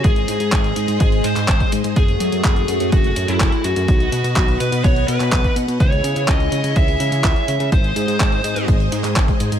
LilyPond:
<<
  \new Staff \with { instrumentName = "Lead electric guitar" } { \time 4/4 \key gis \phrygian \tempo 4 = 125 gis'4 gis'4 gis'8 bis'4 r8 | gis'2 fis'8. e'8. fis'8~ | fis'4. b'8 cis''8 b'4 r8 | cis''4 dis''4 e''2 |
bis'2 r2 | }
  \new Staff \with { instrumentName = "String machine" } { \time 4/4 \key gis \phrygian <gis gis' bis' dis''>1 | <a fis'>1 | <b b' dis'' fis''>1 | <e' gis' cis''>1 |
<gis gis' bis' dis''>1 | }
  \new Staff \with { instrumentName = "Analog synth bass" } { \clef bass \time 4/4 \key gis \phrygian gis,,8 gis,16 gis,16 gis,,8 gis,16 gis,16 gis,,8 gis,16 gis,16 gis,,16 r16 gis,16 gis,16 | fis,,8 fis,16 fis,16 fis,,8 fis,16 fis,16 fis,,8 fis,16 fis,16 fis,,16 r16 fis,16 fis,16 | b,,8 b,16 b,16 b,,8 b,16 b,16 b,,8 b,16 b,16 b,,16 r16 b,16 b,16 | cis,8 cis16 cis16 cis,8 cis16 cis16 cis,8 cis16 cis16 cis,16 r16 cis16 cis16 |
gis,,8 gis,16 gis,16 gis,,8 gis,16 gis,16 gis,,8 gis,16 gis,16 gis,,16 r16 gis,16 gis,16 | }
  \new DrumStaff \with { instrumentName = "Drums" } \drummode { \time 4/4 <hh bd>16 hh16 hh16 hh16 <hc hh bd>16 hh16 hh16 hh16 <hh bd>16 hh16 hh16 <hc hh>16 <hc hh bd>16 <hh bd>16 hh16 hh16 | <hh bd>16 hh16 hh16 hh16 <hc hh bd>16 hh16 hh16 hh16 <hh bd>16 hh16 hh16 hh16 <hc hh bd>16 hh16 hh16 hh16 | <hh bd>16 hh16 hh16 hh16 <hc hh bd>16 hh16 hh16 hh16 <hh bd>16 hh16 hh16 <hc hh>16 <hc hh bd>16 <hh bd>16 hh16 hh16 | <hh bd>16 hh16 hh16 hh16 <hc hh bd>16 hh16 hh16 hh16 <hh bd>16 hh16 hh16 hh16 <hc hh bd>16 hh16 hh16 hh16 |
<hh bd>16 hh16 hh16 hh16 <hc hh bd>16 hh16 hh16 hh16 <hh bd>16 hh16 hh16 <hc hh>16 <hc hh bd>16 <hh bd>16 hh16 hh16 | }
>>